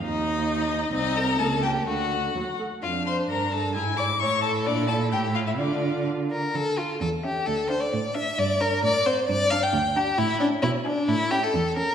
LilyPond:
<<
  \new Staff \with { instrumentName = "Violin" } { \time 2/4 \key d \phrygian \tempo 4 = 132 ees''2 | ees''8 bes''8 a''8 g''8 | fis''4. r8 | \key d \minor f''8 c'''8 bes''8 a''8 |
gis''8 d'''8 cis'''8 a''8 | d''8 a''8 g''8 f''16 e''16 | d''4 r4 | r8 a''8 r8 e''8 |
r8 f''8 r8 f''8 | r8 bes''8 r8 fis''8 | r8 bes''8 r8 bes''8 | r8 a''8 r8 gis''8 |
r8 a''8 r8 a''8 | }
  \new Staff \with { instrumentName = "Violin" } { \time 2/4 \key d \phrygian ees'2 | ees'8 bes'8 a'8 g'8 | fis'4. r8 | \key d \minor f'8 c''8 bes'8 a'8 |
gis'8 d''8 cis''8 a'8 | d'8 a'8 g'8 f'16 e'16 | d'4 r8 bes'8 | a'8 f'8 a'8 g'8 |
a'8 c''16 d''8. e''8 | d''8 bes'8 d''8 c''8 | d''8 f''16 g''8. g'8 | e'8 d'8 e'8 d'8 |
e'8 g'16 a'8. bes'8 | }
  \new Staff \with { instrumentName = "Viola" } { \time 2/4 \key d \phrygian ees'2 | c'4 bes4 | a4 fis8 a8 | \key d \minor d'2 |
e'4 e'4~ | e'2 | f'4. r8 | r8 f'8 r8 cis'8 |
r8 d'8 r8 d'8 | r8 d'8 r8 c'8 | r8 d'8 r8 d'8 | r8 cis'8 r8 d'8 |
r8 cis'8 r8 cis'8 | }
  \new Staff \with { instrumentName = "Cello" } { \clef bass \time 2/4 \key d \phrygian ees,2 | c,4 cis,4 | d,4 ees,8 r8 | \key d \minor f,4 g,4 |
gis,4 a,4 | bes,4 a,4 | d4. r8 | d4 e,4 |
d,4 a,4 | g,4 a,4 | g,4 d,4 | a,4 b,4 |
a,4 e,4 | }
>>